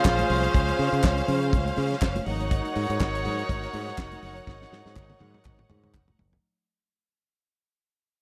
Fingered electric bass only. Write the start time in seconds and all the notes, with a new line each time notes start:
0.05 A#1
0.30 C2
0.54 C#2
0.79 C#3
0.93 C#3
1.04 C#2
1.28 C#3
1.53 C#2
1.78 C#3
2.02 F#1
2.26 G#1
2.76 G#2
2.90 G#2
3.00 G#1
3.25 G#2
3.49 G#1
3.74 G#2
3.98 F1
4.23 F#1
4.47 G#1
4.72 G#2
4.86 G#2
4.96 G#1
5.21 G#2
5.46 G#1
5.70 G#2
5.94 F1
6.19 F#1